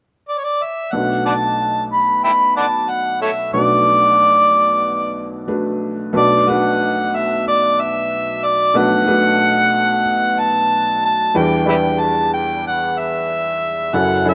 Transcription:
0.28 D5
0.38 C#5
0.44 D5
0.63 E5
0.92 B1 B2 A3 D4 F#4 B4 F#5
1.26 D5 F#5 A5
1.92 B5
2.24 E5 G5 B5
2.57 D5 F#5 A5
2.90 F#5
3.22 A4 C#5 E5
3.54 B1 B2 A3 D4 F#4 B4 D5
5.48 A3 D4 F#4 B4
6.13 B1 B2 A3 D4 F#4 B4
6.17 D5
6.48 A3 D4 F#4 B4 F#5
7.16 E5
7.48 D5
7.80 E5
8.44 D5
8.74 B1 B2 A3 D4 F#4 B4 F#5
9.06 A3 D4 F#4 B4
10.39 A5
11.05 A5
11.34 E2 E3 G3 D4 E4 B4 G5
11.66 G3 D4 E4 B4 E5 G5
12.01 A5
12.34 G5
12.68 F#5
12.98 E5
13.93 F#1 F#2 F#3 C#4 E4 A4 F#5
14.25 F#3 C#4 E4 A4 E5

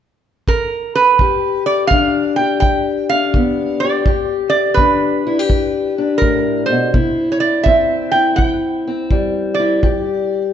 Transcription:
0.48 A#4, kick
0.95 B4
1.19 G2 G4, kick
1.66 D5
1.87 F5, kick
1.92 D3 D4
2.36 G4 G5
2.60 G2 G5, kick
3.09 D4 F5
3.34 D3 B3, kick
3.80 D5
3.84 G4
4.06 G2 G4, kick
4.50 D5
4.74 B4, kick
4.79 D3 D4
5.27 E4
5.39 G4
5.49 G2, kick
5.98 D4
6.18 A#4
6.22 A2, kick
6.66 C5
6.70 B2
6.94 C3 E4, kick
7.32 C#5
7.40 D5
7.63 E3 C4 E5, kick
8.12 E4 G5
8.36 G2 G5, kick
8.87 C4
9.11 E3 G3, kick
9.54 D5
9.60 E4
9.83 G2 G4, kick

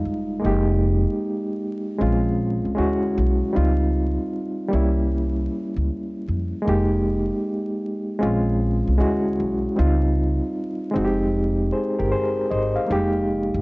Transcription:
Already playing: G3 G#3 D#4 F4 F5
0.05 F1
0.39 G#3 A#3
0.44 F1 D#4 G4
1.99 A#1 G#3 C4 C#4 F4
2.65 C2
2.75 D2 G#3 C#4 E4 F#4
3.18 B1
3.53 C#2 G3 C4 D#4 F4
4.68 G3 A#3
4.73 C2 C#4 E4
5.76 C#2
6.28 F2
6.62 G#3 A#3
6.67 F1 D#4 G4
8.19 A#1 G#3 C4 C#4 F4
8.88 C2
8.98 D2 G#3 C#4 E4 F#4
9.40 B1
9.76 C#2 G3 C4 D#4 F4
10.91 G#3 C4
10.96 F1 D#4 F#4
11.04 G4
11.72 G#4 C5
11.99 G1 G4 A#4
12.12 G#4 C5
12.50 G#1 C5 D#5
12.76 F5
12.85 G3 A#3
12.90 F1 G#3 D#4 G4
13.54 G1

